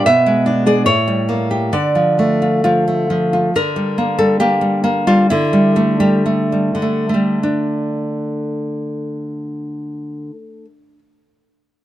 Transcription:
0.06 B2 E5
0.26 G#3
0.46 D4
0.66 G#4 D5
0.86 A2 C#5
1.08 G3
1.29 A#3
1.51 G4
1.73 D3 D5
1.95 F3
2.19 A3
2.42 F4
2.64 F3 F4
2.88 A3
3.10 F3
3.33 F4
3.56 D3 A#4
3.76 G3
3.98 A#3
4.19 G3 A4
4.40 A#3 G4
4.61 G3
4.84 A#3
5.07 G3 F4
5.30 D3 E4
5.53 G3
5.76 A3
6.00 G3 G4
6.26 A3
6.52 G3
6.75 D3
6.82 A3
7.09 A3
7.14 G3
7.43 D4

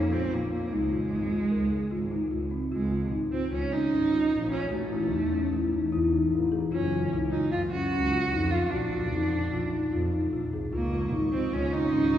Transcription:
Already playing: F2 A#3
0.12 C4 F4
0.31 A#1 A#3 F4
0.51 A#3 F4
0.71 C#2 G#3 D#4
0.91 F4
1.11 G#1 D#4
1.31 F4
1.51 C#2 A#4
1.71 G#4
1.91 G#1 F4
2.11 D#4
2.31 C#2 F4
2.51 C4
2.72 C#2 G#3 F4
2.91 F4
3.11 G#1 D#4
3.32 C4 F4
3.52 C#2 C#4 F4
3.72 C#4 D#4
3.92 G#1 C#4
4.12 F4
4.32 A#1 D#4
4.52 C#4 F4
4.72 A1 A3 F#4
4.92 E4
5.12 E2 D#4
5.32 C#4
5.52 A1 E4
5.72 D#4
5.92 E2 E4
6.12 D#4
6.32 A1 E4
6.52 G#4
6.72 F#1 C#4 F4
6.92 F4
7.13 C#2 D#4
7.31 D#4 F4
7.52 F#1 F4
7.71 C#4 F#4
7.92 C#2 C#4
8.12 F4
8.32 F2 D#4
8.51 F4
8.71 A#1 D4 F#4
8.93 F4
9.12 F2 D#4
9.33 D4
9.53 A#1 F4
9.73 D#4
9.93 F2 F4
10.13 D#4
10.33 A#1 F4
10.52 C2 G#4
10.72 C#2 A#3 F4 D#5 C#6
10.93 F4
11.13 G#1 D#4
11.32 C4 F4
11.53 C#2 C#4 F4
11.73 C#4 D#4
11.92 G#1 C#4
12.13 F4

